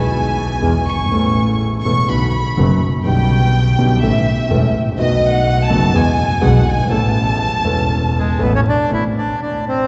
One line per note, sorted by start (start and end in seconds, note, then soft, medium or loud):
0.00 0.58 B1 medium
0.00 0.58 B2 medium
0.00 0.57 E3 medium
0.00 0.58 G#3 medium
0.00 0.58 B3 medium
0.00 0.59 G#4 medium
0.00 0.86 G#5 medium
0.61 0.83 E2 medium
0.61 0.83 E3 medium
0.61 0.83 G#3 medium
0.61 0.83 B3 medium
0.61 0.83 G#4 medium
0.86 1.09 G1 medium
0.86 1.61 C#6 medium
0.93 0.99 F#1 soft
0.98 1.05 G1 soft
1.05 1.11 G#1 medium
1.10 1.80 A1 medium
1.10 1.81 A1 medium
1.10 1.81 A2 medium
1.10 1.80 E3 medium
1.10 1.81 A3 medium
1.10 1.82 C#4 medium
1.10 1.82 A4 medium
1.84 2.05 E1 medium
1.84 2.05 E2 medium
1.84 2.05 E3 medium
1.84 2.06 A3 medium
1.84 2.05 C#4 medium
1.84 2.06 A4 medium
1.84 2.07 C#6 medium
2.08 2.29 B1 medium
2.08 2.29 B2 medium
2.08 2.29 D3 medium
2.08 2.29 F#3 medium
2.08 2.29 B3 medium
2.08 2.29 F#4 medium
2.08 2.31 B5 medium
2.32 2.78 B5 medium
2.57 2.78 F#1 medium
2.57 2.78 F#2 medium
2.57 2.78 D3 medium
2.57 2.77 F#3 medium
2.57 2.78 B3 medium
2.57 2.78 F#4 medium
3.04 3.75 B1 medium
3.04 3.75 B2 medium
3.04 3.74 D3 medium
3.04 3.75 G3 medium
3.04 3.75 B3 medium
3.04 3.76 G4 medium
3.04 3.99 G5 medium
3.78 3.98 B1 medium
3.78 3.99 B1 medium
3.78 3.99 B2 medium
3.78 3.99 D3 medium
3.78 3.99 G3 medium
3.78 3.99 B3 medium
3.78 3.99 G4 medium
4.02 4.22 A1 medium
4.02 4.23 A1 medium
4.02 4.23 A2 medium
4.02 4.23 E3 medium
4.02 4.23 A3 medium
4.02 4.23 C#4 medium
4.02 4.23 A4 medium
4.02 4.74 E5 medium
4.50 4.70 E1 medium
4.50 4.71 E2 medium
4.50 4.70 E3 medium
4.50 4.70 A3 medium
4.50 4.70 C#4 medium
4.50 4.71 A4 medium
4.73 4.97 A1 medium
4.81 4.87 G#1 soft
4.88 4.93 A1 medium
4.92 4.98 A#1 medium
4.97 5.66 B1 medium
4.97 5.67 B1 medium
4.97 5.67 B2 medium
4.97 5.66 D#3 medium
4.97 5.66 A3 medium
4.97 5.67 B3 medium
4.97 5.67 F#4 medium
4.97 5.28 D#5 medium
5.31 5.62 F#5 medium
5.63 5.95 A5 medium
5.69 5.90 F#1 medium
5.69 5.90 F#2 medium
5.69 5.90 D#3 medium
5.69 5.90 A3 medium
5.69 5.90 B3 medium
5.69 5.90 F#4 medium
5.93 6.14 E2 medium
5.93 6.15 E3 medium
5.93 6.14 G#3 medium
5.93 6.14 B3 medium
5.93 6.15 G#4 medium
5.93 6.44 G#5 medium
6.41 6.63 B1 medium
6.41 6.63 B1 loud
6.41 6.63 B2 medium
6.41 6.62 E3 medium
6.41 6.63 G#3 medium
6.41 6.63 B3 medium
6.41 6.63 G#4 medium
6.41 6.67 F#5 medium
6.66 6.90 G1 medium
6.66 6.92 G#5 medium
6.73 6.79 F#1 soft
6.78 6.85 G1 medium
6.84 6.91 G#1 medium
6.84 7.60 E3 medium
6.89 7.61 A1 medium
6.89 7.61 A2 medium
6.89 7.61 B3 medium
6.89 7.61 C#4 medium
6.89 7.62 A4 medium
6.94 8.37 A5 medium
7.63 8.36 E1 medium
7.63 8.36 E2 medium
7.63 8.35 E3 medium
7.63 8.36 B3 medium
7.63 8.37 C#4 medium
7.63 8.37 A4 medium
8.18 8.43 G#3 medium
8.38 8.61 A1 medium
8.38 8.62 A1 medium
8.38 8.61 A2 medium
8.38 8.61 E3 medium
8.38 8.61 B3 medium
8.38 8.53 B3 medium
8.38 8.61 C#4 medium
8.38 8.61 A4 medium
8.55 8.60 C#4 medium
8.69 8.91 D4 medium
8.89 9.11 A1 soft
8.89 9.12 A1 medium
8.89 9.11 A2 soft
8.89 9.11 E3 soft
8.89 9.11 A3 soft
8.89 9.11 C4 soft
8.89 9.11 A4 soft
8.93 9.04 E4 medium
9.18 9.40 D4 medium
9.42 9.65 D4 soft
9.68 9.87 C4 medium